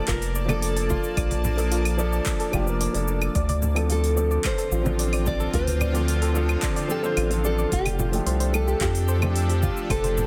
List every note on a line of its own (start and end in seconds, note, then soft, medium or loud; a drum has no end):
0.00 3.32 A#3 medium
0.00 3.32 D5 medium
0.00 3.32 A5 medium
0.08 0.98 F1 medium
0.08 0.21 F4 medium
0.08 0.49 A#4 loud
0.08 kick loud
0.08 clap medium
0.08 open hi-hat medium
0.08 shaker soft
0.22 open hi-hat soft
0.35 0.48 D5 medium
0.35 shaker medium
0.45 1.53 F3 medium
0.45 1.54 A#3 medium
0.45 high conga loud
0.45 claves medium
0.45 shaker soft
0.49 1.55 D4 medium
0.49 0.91 A4 loud
0.49 1.57 A4 medium
0.49 0.61 D5 medium
0.62 open hi-hat medium
0.62 shaker soft
0.76 0.84 A4 loud
0.76 open hi-hat soft
0.90 1.02 F4 medium
0.90 1.95 F4 medium
0.90 kick loud
0.90 high conga medium
0.90 shaker medium
1.04 shaker soft
1.17 2.20 A#1 loud
1.17 1.30 D5 medium
1.17 kick loud
1.17 open hi-hat medium
1.17 claves medium
1.17 shaker soft
1.31 1.43 D5 medium
1.31 open hi-hat soft
1.31 high conga medium
1.44 low conga medium
1.44 shaker medium
1.56 1.95 F3 medium
1.56 1.95 A#3 medium
1.56 1.96 D4 medium
1.56 1.66 A4 medium
1.56 1.97 A4 medium
1.56 open hi-hat soft
1.56 shaker soft
1.72 1.84 F4 medium
1.72 open hi-hat medium
1.72 shaker soft
1.85 open hi-hat soft
1.85 claves medium
1.97 2.50 F3 loud
1.97 2.50 A#3 medium
1.97 2.51 D4 medium
1.97 2.52 A4 loud
1.97 2.11 D5 medium
1.97 shaker medium
2.13 2.25 D5 medium
2.13 shaker soft
2.26 kick loud
2.26 clap medium
2.26 open hi-hat medium
2.26 shaker soft
2.40 2.47 A4 loud
2.40 open hi-hat soft
2.51 2.88 F1 loud
2.51 2.63 F3 medium
2.51 2.64 A#3 medium
2.51 2.64 D4 medium
2.51 2.66 F4 medium
2.51 2.65 G4 loud
2.51 kick medium
2.51 claves medium
2.51 shaker medium
2.66 2.91 F3 medium
2.66 2.91 A#3 medium
2.66 2.92 D4 medium
2.66 2.92 A#4 medium
2.66 shaker soft
2.81 2.93 D5 medium
2.81 open hi-hat medium
2.81 shaker soft
2.93 3.29 F1 medium
2.93 3.33 F3 medium
2.93 3.34 A#3 medium
2.93 3.34 D4 medium
2.93 3.35 A4 medium
2.93 3.07 D5 medium
2.93 open hi-hat soft
3.08 shaker medium
3.22 3.29 A4 loud
3.22 claves medium
3.22 shaker soft
3.35 4.38 D2 loud
3.35 7.68 D3 medium
3.35 7.68 C4 medium
3.35 7.68 F4 medium
3.35 3.48 D5 medium
3.35 kick loud
3.35 open hi-hat medium
3.35 shaker soft
3.49 3.61 D5 medium
3.49 open hi-hat soft
3.49 high conga medium
3.62 low conga medium
3.62 shaker medium
3.75 4.13 F3 medium
3.75 4.14 C4 medium
3.75 4.14 D4 medium
3.75 3.84 A4 loud
3.75 4.15 A4 medium
3.75 open hi-hat soft
3.75 claves medium
3.75 shaker soft
3.90 4.02 F4 medium
3.90 4.45 A4 medium
3.90 open hi-hat medium
3.90 shaker soft
4.04 open hi-hat soft
4.16 4.39 F3 medium
4.16 4.40 C4 medium
4.16 4.40 D4 medium
4.16 4.41 A4 medium
4.16 4.30 D5 medium
4.16 shaker medium
4.31 4.43 D5 medium
4.31 shaker soft
4.44 5.27 C5 medium
4.44 kick loud
4.44 clap medium
4.44 open hi-hat medium
4.44 claves medium
4.44 shaker soft
4.58 4.66 A4 medium
4.58 open hi-hat soft
4.71 5.47 A1 medium
4.71 4.84 F4 medium
4.71 shaker medium
4.82 5.89 F3 medium
4.82 5.91 C4 medium
4.82 shaker soft
4.86 5.92 D4 medium
4.86 5.93 A4 medium
4.86 high conga loud
4.99 5.12 D5 medium
4.99 open hi-hat medium
4.99 shaker soft
5.13 5.25 D5 medium
5.13 open hi-hat soft
5.13 claves medium
5.26 5.54 D5 loud
5.26 kick loud
5.26 high conga medium
5.26 shaker medium
5.40 5.47 A4 loud
5.40 shaker soft
5.53 6.57 D2 medium
5.53 5.66 F4 medium
5.53 6.59 C5 loud
5.53 kick loud
5.53 open hi-hat medium
5.53 shaker soft
5.67 open hi-hat soft
5.67 high conga medium
5.81 5.93 D5 medium
5.81 low conga medium
5.81 claves medium
5.81 shaker medium
5.93 6.31 F3 medium
5.93 6.32 C4 medium
5.93 6.32 D4 medium
5.93 6.33 A4 medium
5.93 6.07 D5 medium
5.93 open hi-hat soft
5.93 shaker soft
6.08 open hi-hat medium
6.08 shaker soft
6.22 6.29 A4 loud
6.22 open hi-hat soft
6.33 6.86 F3 loud
6.33 6.87 C4 medium
6.33 6.87 D4 medium
6.33 6.48 F4 medium
6.33 6.88 A4 loud
6.33 shaker medium
6.49 claves medium
6.49 shaker soft
6.62 6.75 D5 medium
6.62 kick loud
6.62 clap medium
6.62 open hi-hat medium
6.62 shaker soft
6.76 6.88 D5 medium
6.76 open hi-hat soft
6.88 6.99 F3 medium
6.88 7.00 C4 medium
6.88 7.01 D4 medium
6.88 7.01 G4 loud
6.88 7.45 A4 loud
6.88 shaker medium
7.02 7.27 F3 medium
7.02 7.27 C4 medium
7.02 7.28 D4 medium
7.02 7.11 A4 loud
7.02 7.28 C5 medium
7.02 shaker soft
7.17 7.66 A1 loud
7.17 7.30 F4 medium
7.17 open hi-hat medium
7.17 claves medium
7.17 shaker soft
7.29 7.69 F3 medium
7.29 7.70 C4 medium
7.29 7.70 D4 medium
7.29 7.71 A4 medium
7.29 open hi-hat soft
7.44 7.73 A4 loud
7.44 7.57 D5 medium
7.44 shaker medium
7.58 7.71 D5 medium
7.58 shaker soft
7.72 8.20 F1 loud
7.72 10.27 F3 medium
7.72 10.27 D4 medium
7.72 10.27 G4 medium
7.72 8.54 G4 loud
7.72 10.27 A4 loud
7.72 kick loud
7.72 open hi-hat medium
7.72 shaker soft
7.85 7.93 G4 loud
7.85 open hi-hat soft
7.85 high conga medium
7.85 claves medium
7.99 8.11 F4 medium
7.99 low conga medium
7.99 shaker medium
8.11 8.50 F3 medium
8.11 8.50 A3 medium
8.11 8.51 D4 medium
8.11 8.51 G4 medium
8.11 open hi-hat soft
8.11 shaker soft
8.26 8.75 C2 medium
8.26 8.39 C5 medium
8.26 open hi-hat medium
8.26 shaker soft
8.40 8.52 C5 medium
8.40 open hi-hat soft
8.52 8.76 F3 medium
8.52 8.76 A3 medium
8.52 8.77 D4 medium
8.52 8.77 G4 medium
8.52 8.82 A4 loud
8.52 claves medium
8.52 shaker medium
8.68 8.75 G4 loud
8.68 shaker soft
8.81 9.70 F2 medium
8.81 8.93 F4 medium
8.81 9.32 G4 medium
8.81 kick loud
8.81 clap medium
8.81 open hi-hat medium
8.81 shaker soft
8.95 open hi-hat soft
9.08 9.21 C5 medium
9.08 shaker medium
9.18 10.26 F3 medium
9.18 10.27 A3 medium
9.18 9.34 C5 medium
9.18 claves medium
9.18 shaker soft
9.23 10.27 D4 medium
9.23 10.27 G4 medium
9.23 high conga medium
9.36 open hi-hat medium
9.36 shaker soft
9.50 9.57 G4 loud
9.50 open hi-hat soft
9.63 9.75 F4 medium
9.63 9.91 F4 medium
9.63 kick medium
9.63 high conga medium
9.63 shaker medium
9.77 shaker soft
9.90 10.27 F1 loud
9.90 10.27 A4 loud
9.90 10.03 C5 medium
9.90 kick loud
9.90 open hi-hat medium
9.90 claves medium
9.90 shaker soft
10.04 10.16 C5 medium
10.04 open hi-hat soft
10.04 high conga medium
10.18 low conga medium
10.18 shaker medium